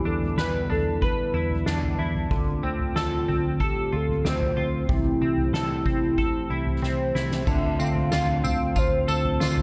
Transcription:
0.00 4.85 D3 medium
0.00 2.31 E3 medium
0.00 2.28 G3 medium
0.00 2.29 B3 medium
0.00 2.29 E4 medium
0.05 0.34 E2 medium
0.05 0.69 D4 medium
0.05 0.40 A4 medium
0.21 floor tom medium
0.37 0.66 E2 medium
0.37 1.01 B4 medium
0.37 0.70 B4 loud
0.37 snare medium
0.70 1.12 E2 medium
0.70 1.66 D4 medium
0.70 1.05 A4 medium
0.70 floor tom medium
1.02 2.37 B4 medium
1.02 2.00 B4 medium
1.02 kick medium
1.34 1.62 E2 medium
1.34 1.97 E4 medium
1.51 floor tom medium
1.66 1.95 E2 medium
1.66 2.63 D4 medium
1.66 snare loud
1.83 floor tom medium
1.99 2.27 E2 medium
1.99 2.37 E4 medium
2.15 floor tom medium
2.31 2.59 D2 loud
2.31 4.89 D3 medium
2.31 7.43 A3 medium
2.31 7.43 C4 medium
2.31 4.87 F4 medium
2.31 kick loud
2.31 floor tom loud
2.63 2.92 D2 medium
2.63 3.28 C4 medium
2.79 floor tom medium
2.96 3.24 D2 medium
2.96 3.64 F4 medium
2.96 3.60 A4 medium
2.96 snare medium
3.28 3.71 D2 medium
3.28 4.24 C4 medium
3.28 floor tom medium
3.60 3.98 G4 loud
3.60 5.54 A4 medium
3.60 kick medium
3.92 4.21 D2 medium
3.92 4.56 F4 medium
3.92 4.30 A4 medium
4.09 floor tom soft
4.25 4.53 D2 medium
4.25 5.21 C4 medium
4.25 4.91 C5 loud
4.25 snare loud
4.41 floor tom medium
4.57 4.85 D2 medium
4.57 4.95 F4 medium
4.89 5.17 C2 medium
4.89 7.47 C3 medium
4.89 7.44 E3 medium
4.89 7.44 G4 medium
4.89 kick loud
4.89 floor tom loud
4.93 6.80 E4 medium
5.21 5.50 C2 medium
5.21 5.85 C4 medium
5.38 floor tom medium
5.53 5.81 C2 loud
5.53 6.18 A4 medium
5.53 snare loud
5.86 6.28 C2 medium
5.86 6.82 C4 medium
5.86 kick medium
5.86 floor tom medium
6.18 9.08 A4 medium
6.18 kick medium
6.50 6.79 C2 medium
6.50 7.14 E4 medium
6.67 floor tom medium
6.82 7.11 C2 medium
6.82 7.79 C4 medium
6.82 7.51 C5 medium
6.82 snare medium
7.15 7.43 C2 medium
7.15 7.54 E4 medium
7.15 snare medium
7.31 snare medium
7.47 7.75 D2 loud
7.47 9.62 D3 medium
7.47 9.62 A3 medium
7.47 9.62 C4 medium
7.47 9.62 F4 medium
7.47 7.80 E5 loud
7.47 kick loud
7.47 floor tom loud
7.47 crash loud
7.47 tambourine medium
7.79 8.08 D2 loud
7.79 8.43 C4 medium
7.79 8.41 F5 loud
7.79 tambourine medium
7.95 floor tom medium
8.12 8.40 D2 loud
8.12 8.75 F4 medium
8.12 snare loud
8.12 tambourine loud
8.44 8.72 D2 loud
8.44 9.62 C4 medium
8.44 8.80 F5 loud
8.44 floor tom medium
8.44 tambourine medium
8.76 9.04 D2 loud
8.76 9.39 F4 medium
8.76 9.10 C5 medium
8.76 kick medium
8.76 tambourine medium
9.08 9.37 D2 medium
9.08 9.62 A4 medium
9.08 9.62 C5 loud
9.08 tambourine medium
9.25 floor tom medium
9.40 9.62 D2 medium
9.40 9.62 F4 medium
9.40 snare loud
9.40 tambourine medium
9.57 floor tom medium

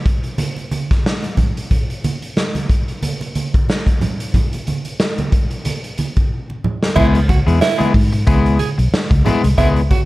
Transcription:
0.06 kick medium
0.06 closed hi-hat medium
0.24 closed hi-hat soft
0.38 closed hi-hat medium
0.38 muted conga soft
0.38 high conga medium
0.56 closed hi-hat soft
0.56 muted conga soft
0.71 closed hi-hat medium
0.71 high conga medium
0.91 kick medium
0.91 snare soft
0.91 closed hi-hat soft
1.06 snare loud
1.23 closed hi-hat soft
1.23 muted conga soft
1.37 kick medium
1.37 closed hi-hat medium
1.37 low conga medium
1.57 closed hi-hat medium
1.71 kick medium
1.71 closed hi-hat medium
1.71 muted conga soft
1.71 low conga medium
1.90 closed hi-hat soft
2.04 closed hi-hat medium
2.04 high conga medium
2.22 closed hi-hat soft
2.36 snare medium
2.36 muted conga soft
2.55 closed hi-hat soft
2.55 muted conga soft
2.55 high conga medium
2.69 kick medium
2.69 closed hi-hat medium
2.88 closed hi-hat soft
3.03 closed hi-hat medium
3.03 high conga medium
3.21 closed hi-hat soft
3.21 muted conga soft
3.35 closed hi-hat medium
3.35 high conga medium
3.54 kick medium
3.54 closed hi-hat soft
3.69 snare loud
3.69 muted conga soft
3.87 kick medium
3.87 closed hi-hat medium
3.87 muted conga soft
4.01 closed hi-hat medium
4.01 low conga medium
4.20 closed hi-hat medium
4.34 kick medium
4.34 closed hi-hat medium
4.34 low conga medium
4.53 closed hi-hat soft
4.53 muted conga soft
4.67 closed hi-hat medium
4.67 high conga medium
4.85 closed hi-hat soft
5.00 snare loud
5.18 closed hi-hat soft
5.18 muted conga soft
5.18 high conga medium
5.32 kick medium
5.32 closed hi-hat medium
5.50 closed hi-hat soft
5.65 closed hi-hat medium
5.65 high conga medium
5.84 closed hi-hat soft
5.98 closed hi-hat medium
5.98 high conga medium
6.16 kick medium
6.16 closed hi-hat soft
6.50 muted conga soft
6.64 low conga medium
6.83 snare medium
6.96 7.41 C#2 loud
6.96 7.18 G#3 medium
6.96 7.18 B3 loud
6.96 7.07 E4 loud
6.96 7.18 E4 loud
6.96 7.19 G#4 loud
6.96 kick loud
6.96 crash medium
6.96 muted conga soft
6.96 low conga medium
7.15 closed hi-hat medium
7.29 7.40 F#4 medium
7.29 muted clean electric guitar stroke medium
7.29 kick medium
7.29 closed hi-hat medium
7.29 high conga medium
7.46 7.60 E2 loud
7.46 7.59 G#3 soft
7.46 7.60 B3 medium
7.46 7.60 E4 medium
7.46 7.60 G#4 medium
7.46 closed hi-hat medium
7.61 7.87 E4 loud
7.61 snare loud
7.78 7.93 G#3 medium
7.78 7.93 B3 medium
7.78 7.93 E4 medium
7.78 7.94 G#4 medium
7.78 closed hi-hat soft
7.78 high conga medium
7.94 8.23 G#2 loud
7.94 muted clean electric guitar stroke soft
7.94 kick loud
7.94 open hi-hat medium
8.12 muted clean electric guitar stroke soft
8.12 closed hi-hat soft
8.27 8.56 C#2 medium
8.27 8.57 G#3 medium
8.27 8.57 B3 medium
8.27 8.57 E4 medium
8.27 8.58 G#4 medium
8.27 kick loud
8.27 closed hi-hat medium
8.27 high conga medium
8.46 closed hi-hat soft
8.59 8.70 G#4 medium
8.59 closed hi-hat medium
8.59 high conga medium
8.78 8.91 B1 medium
8.78 muted clean electric guitar stroke soft
8.78 closed hi-hat soft
8.92 muted fingered electric bass stroke soft
8.92 snare loud
9.11 9.24 C#2 loud
9.11 muted clean electric guitar stroke medium
9.11 kick loud
9.11 closed hi-hat medium
9.11 muted conga soft
9.25 9.47 G#3 medium
9.25 9.44 B3 medium
9.25 9.43 E4 loud
9.25 9.43 G#4 loud
9.25 closed hi-hat medium
9.25 low conga medium
9.44 9.56 C2 loud
9.44 muted clean electric guitar stroke soft
9.44 closed hi-hat medium
9.58 9.87 C#2 loud
9.58 9.80 G#3 medium
9.58 9.80 B3 loud
9.58 9.69 E4 loud
9.58 9.80 E4 loud
9.58 9.80 G#4 medium
9.58 kick medium
9.58 closed hi-hat medium
9.58 low conga medium
9.76 closed hi-hat soft
9.89 10.02 F#4 loud
9.89 muted clean electric guitar stroke soft
9.89 kick medium
9.89 closed hi-hat medium
9.89 high conga medium

